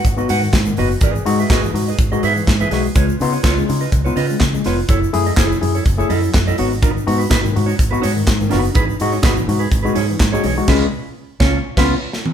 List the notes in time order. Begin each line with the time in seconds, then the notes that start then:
0.05 G#1, muted clean electric guitar stroke, kick, closed hi-hat, shaker
0.17 B3 D#4 F#4 B4 D#5, shaker
0.29 G#2 F#4 B4 F#5, open hi-hat, shaker
0.42 G#2 D#3, muted clean electric guitar stroke, shaker
0.53 G#2 D#4 F#4, muted clean electric guitar stroke, kick, snare, clap, closed hi-hat, shaker
0.65 G#2 D#3, muted clean electric guitar stroke, shaker
0.77 F#1 B3 D#4 F#4 B4 D#5, open hi-hat
0.91 muted clean electric guitar stroke, shaker
1.01 G#1 E3 G#4 B4 D#5, kick, closed hi-hat, shaker
1.15 muted clean electric guitar stroke, shaker
1.25 G#2 G#3 D#4 F#4, muted clean electric guitar stroke, open hi-hat, shaker
1.39 D#4 F#4 G#4 B4 E5, shaker
1.50 G#1 D#4 F#4 G#4 B4 D#5, kick, snare, clap, closed hi-hat, shaker
1.63 E3, muted clean electric guitar stroke, shaker
1.74 G#2 D#4 F#4, muted clean electric guitar stroke, open hi-hat
1.88 G#4 B4 D#5, shaker
1.99 G#1, muted clean electric guitar stroke, kick, closed hi-hat, shaker
2.12 G#3 D#4 F#4 G#4 B4 D#5, shaker
2.23 G#2 G#4 B4 E5, open hi-hat, shaker
2.36 E3, muted clean electric guitar stroke, shaker
2.46 G#2 D#4 F#4, muted clean electric guitar stroke, kick, snare, clap, closed hi-hat, shaker
2.60 E3 G#4 B4 E5, shaker
2.71 B1 G#3 D#4 F#4 G#4 B4 E5, snare, open hi-hat
2.84 muted clean electric guitar stroke, shaker
2.95 C#2 C#3 G#3 F4 B4 C#5, kick, closed hi-hat, shaker
3.08 muted clean electric guitar stroke, shaker
3.19 C#3 B3 D#4 F4, muted clean electric guitar stroke, open hi-hat, shaker
3.32 D#4 F4 B4 C#5, shaker
3.43 C#2 D#4 F4 B4 C#5, kick, snare, clap, closed hi-hat, shaker
3.56 C#3 G#3, muted clean electric guitar stroke, shaker
3.68 C#3 D#4 F4, muted clean electric guitar stroke, open hi-hat, shaker
3.81 F4 B4 D#5, shaker
3.92 C#2, muted clean electric guitar stroke, kick, closed hi-hat, shaker
4.05 B3 D#4 F4 B4 C#5, shaker
4.16 C#3 F4 B4 D#5, open hi-hat, shaker
4.29 C#3 G#3, muted clean electric guitar stroke, shaker
4.40 C#3 D#4 F4, muted clean electric guitar stroke, kick, snare, clap, closed hi-hat, shaker
4.54 C#3 G#3, muted clean electric guitar stroke, shaker
4.64 F1 B3 D#4 F4 B4 C#5, snare, open hi-hat, shaker
4.77 muted clean electric guitar stroke, shaker
4.89 F#1 F#3 E4 A4 C#5, kick, closed hi-hat, shaker
5.01 muted clean electric guitar stroke, shaker
5.13 F#2 A3 E4 G#4, muted clean electric guitar stroke, open hi-hat, shaker
5.26 E4 G#4 A4 D#5, shaker
5.36 F#1 E4 G#4 A4 C#5, kick, snare, clap, closed hi-hat, shaker
5.50 F#3, muted clean electric guitar stroke, shaker
5.61 F#2 E4 G#4, muted clean electric guitar stroke, open hi-hat
5.75 E4 A4 C#5, shaker
5.86 F#1, muted clean electric guitar stroke, kick, closed hi-hat, shaker
5.98 A3 E4 G#4 A4 C#5, shaker
6.09 F#2 E4 A4 D#5, open hi-hat, shaker
6.22 F#3, muted clean electric guitar stroke, shaker
6.34 F#2 E4 G#4, muted clean electric guitar stroke, kick, snare, clap, closed hi-hat, shaker
6.46 F#3 E4 A4 D#5, shaker
6.58 G#1 B3 D#4 F#4 C#5, open hi-hat
6.71 muted clean electric guitar stroke, shaker
6.82 G#2 D#3 D#4 F#4 B4, kick, closed hi-hat, shaker
6.94 muted clean electric guitar stroke, shaker
7.06 G#2 B3 D#4 F#4, muted clean electric guitar stroke, open hi-hat, shaker
7.18 D#4 F#4 B4, shaker
7.30 G#1 D#4 F#4 B4, kick, snare, clap, closed hi-hat, shaker
7.43 G#2 D#3, muted clean electric guitar stroke, shaker
7.53 G#2 D#4 F#4, muted clean electric guitar stroke, open hi-hat
7.66 D#4 F#4 C#5, shaker
7.78 G#1, muted clean electric guitar stroke, kick, closed hi-hat, shaker
7.91 B3 D#4 F#4 B4, shaker
8.02 G#2 D#4 F#4 C#5, open hi-hat, shaker
8.15 G#2 D#3, muted clean electric guitar stroke, shaker
8.26 G#2 D#4 F#4, muted clean electric guitar stroke, kick, snare, clap, closed hi-hat, shaker
8.38 G#2 D#3, muted clean electric guitar stroke, shaker
8.50 F#1 B3 D#4 F#4 B4, snare, open hi-hat
8.63 muted clean electric guitar stroke, shaker
8.74 G#1 E3 D#4 G#4 B4, kick, closed hi-hat, shaker
8.87 muted clean electric guitar stroke, shaker
9.00 G#2 G#3 D#4 F#4, muted clean electric guitar stroke, open hi-hat, shaker
9.12 D#4 F#4 G#4 C#5, shaker
9.22 G#1 D#4 F#4 G#4 B4, kick, snare, clap, closed hi-hat, shaker
9.35 E3, muted clean electric guitar stroke, shaker
9.47 G#2 D#4 F#4, muted clean electric guitar stroke, open hi-hat
9.59 D#4 G#4 B4, shaker
9.71 G#1, muted clean electric guitar stroke, kick, closed hi-hat, shaker
9.83 G#3 D#4 F#4 G#4 B4, shaker
9.95 G#2 D#4 G#4 C#5, open hi-hat, shaker
10.08 E3, muted clean electric guitar stroke, shaker
10.19 G#2, muted clean electric guitar stroke, kick, snare, clap, closed hi-hat, shaker
10.32 G#3 D#4 F#4 G#4 C#5, shaker
10.44 B1 E3 D#4 G#4 C#5, open hi-hat
10.57 G#3 D#4 F#4, muted clean electric guitar stroke, shaker
10.68 C#2 C#3 G#3 C#4 F4 B4, kick, snare, crash
11.40 C#2 C#4 F4 C#5, kick, snare
11.77 C#2 B3 C#4 F4 B4, kick, snare, crash
12.13 snare
12.26 high tom